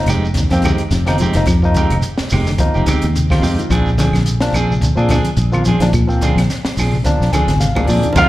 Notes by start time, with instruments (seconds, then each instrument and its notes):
0.06 fingered electric bass F1, clean electric guitar G#3 C4 D#4 G4, snare, closed hi-hat, low conga, claves, shekere
0.23 muted clean electric guitar stroke, shekere
0.34 tine electric piano A#3 D#4, kick, snare, closed hi-hat, high conga, low conga, shekere
0.49 fingered electric bass F2, tine electric piano F3 A#3 C4, clean electric guitar C4 D#4 G4, snare, shekere
0.62 clean electric guitar D#3 G#3 C4 D#4 G4, kick, closed hi-hat, high conga, claves, shekere
0.78 closed hi-hat, shekere
0.91 fingered electric bass F1, clean electric guitar C3, snare, closed hi-hat, shekere
1.06 tine electric piano F3 A#3 D#4, clean electric guitar C4 D#4 G4, snare, high conga, claves, shekere
1.18 clean electric guitar F3 G#3 C4 D#4, closed hi-hat, low conga, shekere
1.22 clean electric guitar G4
1.33 fingered electric bass F1, clean electric guitar D#3, tine electric piano F3 A#3 D#4, snare, closed hi-hat, shekere
1.46 fingered electric bass F2, clean electric guitar F3, kick, snare, closed hi-hat, claves, shekere
1.62 tine electric piano F3 A#3 D#4, kick, shekere
1.74 clean electric guitar D#3 G#3 C4 D#4 G4, kick, closed hi-hat, high conga, shekere
1.90 fingered electric bass F1, closed hi-hat, claves, shekere
2.02 closed hi-hat, shekere
2.18 muted fingered electric bass stroke, snare, shekere
2.29 fingered electric bass F1, clean electric guitar G#3 C4 D#4 G4, open hi-hat, low conga, claves, shekere
2.46 clean electric guitar D3, snare, shekere
2.58 tine electric piano F3 A#3 D#4, kick, closed hi-hat, high conga, low conga, shekere
2.74 fingered electric bass F1, clean electric guitar C4 D#4 G4, shekere
2.86 clean electric guitar D#3 G#3 C4 D#4 G4, kick, closed hi-hat, high conga, claves, shekere
3.02 fingered electric bass D#2, closed hi-hat, shekere
3.16 clean electric guitar C3, closed hi-hat, shekere
3.30 tine electric piano F3 A#3 F4, clean electric guitar C4 D#4 G4, kick, snare, high conga, claves, shekere
3.42 fingered electric bass F2, clean electric guitar F3 G#3 C4 D#4 G4, open hi-hat, low conga, shekere
3.58 clean electric guitar D#3, closed hi-hat, shekere
3.70 fingered electric bass A#1, clean electric guitar F3 C4 D4 G#4, kick, closed hi-hat, claves, shekere
3.86 kick, shekere
3.98 clean electric guitar D3 F3 C4 D4 G#4, kick, snare, closed hi-hat, high conga, shekere
4.13 fingered electric bass A#1, snare, high conga, claves, shekere
4.26 closed hi-hat, shekere
4.41 tine electric piano F3 A#3 D4, snare, shekere
4.53 fingered electric bass A#1, clean electric guitar F3 C4 D4 G#4, closed hi-hat, low conga, claves, shekere
4.71 clean electric guitar C3, shekere
4.81 tine electric piano A#3 D4, kick, closed hi-hat, high conga, shekere
4.95 fingered electric bass A#2, tine electric piano F3 A#3 D4, clean electric guitar C4 D4 G#4, shekere
5.09 clean electric guitar D3 F3 C4 D4 G#4, kick, snare, closed hi-hat, high conga, low conga, claves, shekere
5.25 closed hi-hat, shekere
5.37 fingered electric bass A#1, closed hi-hat, shekere
5.52 tine electric piano F3 A#3 F4, high conga, claves, shekere
5.65 clean electric guitar F3 C4 D4 G#4, closed hi-hat, low conga, shekere
5.80 fingered electric bass A#1, clean electric guitar D#3, tine electric piano F3 A#3 D4, snare, closed hi-hat, shekere
5.93 fingered electric bass A#2, clean electric guitar F3, kick, closed hi-hat, claves, shekere
6.07 tine electric piano F3 A#3 C4, kick, shekere
6.21 clean electric guitar D3 F3 C4 D4 G#4, kick, closed hi-hat, high conga, shekere
6.36 fingered electric bass A#1, snare, closed hi-hat, high conga, claves, shekere
6.50 snare, closed hi-hat, shekere
6.65 muted fingered electric bass stroke, snare, shekere
6.77 fingered electric bass A#1, clean electric guitar F3 C4 D4 G#4, open hi-hat, low conga, claves, shekere
6.92 clean electric guitar C3, shekere
7.04 tine electric piano F3 A#3 D4, kick, snare, closed hi-hat, high conga, low conga, shekere
7.20 fingered electric bass A#1, snare, shekere
7.33 clean electric guitar D3 F3 C4 D4 G#4, tine electric piano G#5, kick, closed hi-hat, high conga, claves, shekere
7.47 fingered electric bass G#1, snare, closed hi-hat, high conga, shekere
7.58 clean electric guitar C3, tine electric piano F5, snare, closed hi-hat, high conga, shekere
7.75 tine electric piano F3 A#3 D4, clean electric guitar C4 D4 G#4, kick, low conga, claves, shekere
7.85 fingered electric bass A#2, clean electric guitar F3, tine electric piano D5, open hi-hat, low conga
7.89 clean electric guitar F3 C4 D4 G#4, shekere
7.95 low conga
8.03 clean electric guitar D#3, closed hi-hat, low conga, shekere
8.13 fingered electric bass F2, clean electric guitar D3 G#3 C4, tine electric piano F3 A#3 D#4, trumpet F4, kick, snare, ride bell, low conga, shekere
8.17 clean electric guitar D#4 G4, harp F5, claves